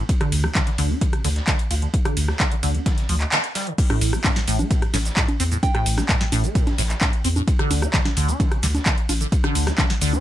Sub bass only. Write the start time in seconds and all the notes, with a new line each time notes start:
0.32 D2
0.78 D2
1.24 D2
1.71 D2
2.17 D2
2.63 D2
3.09 D2
4.01 A1
4.48 A1
4.94 A1
5.40 E2
5.86 A1
6.32 A1
6.78 A1
7.25 E2
7.71 D2
8.17 D2
8.63 D2
9.09 A1
9.55 D2
10.01 D2